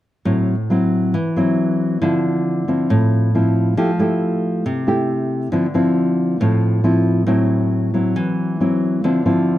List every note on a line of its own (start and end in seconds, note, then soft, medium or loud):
0.25 1.11 A2 medium
0.25 0.54 F#3 soft
0.25 0.54 C4 soft
0.25 0.55 E4 soft
0.70 1.14 F#3 medium
0.70 1.14 C4 medium
0.70 1.14 E4 medium
1.14 2.00 E3 medium
1.36 1.98 F#3 soft
1.36 1.99 C4 medium
1.36 1.99 E4 medium
2.02 2.87 D3 medium
2.02 2.64 F3 soft
2.02 2.64 C4 soft
2.02 2.64 E4 medium
2.68 3.30 F3 soft
2.68 3.30 C4 soft
2.68 3.30 E4 medium
2.90 3.75 A2 medium
3.35 3.74 F3 medium
3.35 3.75 C4 soft
3.35 3.75 E4 soft
3.77 4.63 F3 medium
3.77 3.90 A3 soft
3.77 3.90 E4 soft
3.77 3.90 G4 medium
3.99 4.83 A3 medium
3.99 4.83 E4 medium
3.99 4.84 G4 medium
4.66 5.51 C3 medium
4.87 5.49 A3 soft
4.87 5.49 E4 soft
4.87 5.49 G4 medium
5.52 6.38 D3 medium
5.52 5.65 F3 medium
5.52 5.65 C4 soft
5.52 5.66 E4 soft
5.74 6.37 F3 medium
5.74 6.37 C4 medium
5.74 6.37 E4 medium
6.40 7.25 A2 medium
6.40 6.80 F3 soft
6.40 6.81 C4 soft
6.40 6.81 E4 medium
6.84 7.26 F3 medium
6.84 7.26 C4 soft
6.84 7.26 E4 medium
7.27 8.13 A2 medium
7.27 7.89 F#3 soft
7.27 7.90 C4 soft
7.27 7.90 E4 medium
7.94 8.56 F#3 soft
7.94 8.56 C4 soft
7.94 8.56 E4 medium
8.16 9.01 E3 medium
8.60 9.02 F#3 soft
8.60 9.02 C4 soft
8.60 9.02 E4 soft
9.04 9.58 D3 medium
9.04 9.22 F3 soft
9.04 9.22 C4 soft
9.04 9.22 E4 soft
9.26 9.58 F3 medium
9.26 9.58 C4 medium
9.26 9.58 E4 medium